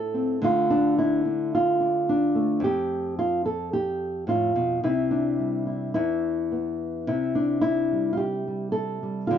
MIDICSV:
0, 0, Header, 1, 2, 480
1, 0, Start_track
1, 0, Tempo, 550459
1, 366, Time_signature, 4, 2, 24, 8
1, 3723, Tempo, 559180
1, 8111, End_track
2, 0, Start_track
2, 0, Title_t, "Nylon-string guitar"
2, 0, Program_c, 0, 24
2, 0, Note_on_c, 0, 45, 58
2, 0, Note_on_c, 0, 69, 93
2, 123, Note_on_c, 0, 60, 44
2, 336, Note_off_c, 0, 60, 0
2, 362, Note_on_c, 0, 50, 71
2, 366, Note_off_c, 0, 45, 0
2, 366, Note_on_c, 0, 57, 47
2, 370, Note_on_c, 0, 62, 43
2, 374, Note_off_c, 0, 69, 0
2, 386, Note_on_c, 0, 65, 86
2, 602, Note_off_c, 0, 62, 0
2, 612, Note_on_c, 0, 62, 86
2, 855, Note_off_c, 0, 65, 0
2, 858, Note_on_c, 0, 64, 91
2, 1079, Note_off_c, 0, 62, 0
2, 1090, Note_on_c, 0, 62, 47
2, 1331, Note_off_c, 0, 64, 0
2, 1349, Note_on_c, 0, 65, 85
2, 1559, Note_off_c, 0, 62, 0
2, 1569, Note_on_c, 0, 62, 42
2, 1808, Note_off_c, 0, 62, 0
2, 1824, Note_on_c, 0, 62, 81
2, 2038, Note_off_c, 0, 57, 0
2, 2048, Note_on_c, 0, 57, 47
2, 2258, Note_off_c, 0, 57, 0
2, 2268, Note_on_c, 0, 41, 76
2, 2284, Note_off_c, 0, 50, 0
2, 2295, Note_off_c, 0, 62, 0
2, 2297, Note_off_c, 0, 65, 0
2, 2302, Note_on_c, 0, 67, 84
2, 2770, Note_off_c, 0, 67, 0
2, 2779, Note_on_c, 0, 65, 91
2, 3009, Note_off_c, 0, 65, 0
2, 3014, Note_on_c, 0, 69, 80
2, 3246, Note_off_c, 0, 69, 0
2, 3256, Note_on_c, 0, 67, 92
2, 3723, Note_on_c, 0, 45, 56
2, 3732, Note_off_c, 0, 67, 0
2, 3739, Note_on_c, 0, 65, 83
2, 3963, Note_off_c, 0, 45, 0
2, 3969, Note_on_c, 0, 47, 57
2, 4164, Note_off_c, 0, 41, 0
2, 4205, Note_off_c, 0, 47, 0
2, 4209, Note_off_c, 0, 65, 0
2, 4209, Note_on_c, 0, 48, 69
2, 4214, Note_on_c, 0, 64, 76
2, 4442, Note_on_c, 0, 62, 69
2, 4688, Note_on_c, 0, 55, 38
2, 4912, Note_off_c, 0, 64, 0
2, 4922, Note_on_c, 0, 64, 37
2, 5133, Note_off_c, 0, 48, 0
2, 5155, Note_off_c, 0, 64, 0
2, 5159, Note_on_c, 0, 64, 86
2, 5160, Note_off_c, 0, 62, 0
2, 5164, Note_off_c, 0, 55, 0
2, 5168, Note_on_c, 0, 40, 74
2, 5653, Note_on_c, 0, 59, 42
2, 6125, Note_off_c, 0, 64, 0
2, 6129, Note_on_c, 0, 48, 68
2, 6135, Note_on_c, 0, 64, 74
2, 6137, Note_off_c, 0, 59, 0
2, 6139, Note_off_c, 0, 40, 0
2, 6369, Note_on_c, 0, 62, 70
2, 6584, Note_off_c, 0, 64, 0
2, 6594, Note_on_c, 0, 64, 91
2, 6861, Note_on_c, 0, 55, 42
2, 7030, Note_off_c, 0, 62, 0
2, 7035, Note_on_c, 0, 65, 74
2, 7070, Note_off_c, 0, 64, 0
2, 7073, Note_on_c, 0, 67, 80
2, 7093, Note_off_c, 0, 65, 0
2, 7324, Note_off_c, 0, 55, 0
2, 7334, Note_on_c, 0, 55, 39
2, 7539, Note_off_c, 0, 67, 0
2, 7542, Note_on_c, 0, 69, 91
2, 7796, Note_off_c, 0, 55, 0
2, 7807, Note_on_c, 0, 55, 45
2, 8012, Note_off_c, 0, 48, 0
2, 8017, Note_on_c, 0, 65, 85
2, 8030, Note_off_c, 0, 69, 0
2, 8043, Note_off_c, 0, 55, 0
2, 8046, Note_on_c, 0, 50, 72
2, 8056, Note_on_c, 0, 53, 45
2, 8065, Note_on_c, 0, 55, 48
2, 8111, Note_off_c, 0, 50, 0
2, 8111, Note_off_c, 0, 53, 0
2, 8111, Note_off_c, 0, 55, 0
2, 8111, Note_off_c, 0, 65, 0
2, 8111, End_track
0, 0, End_of_file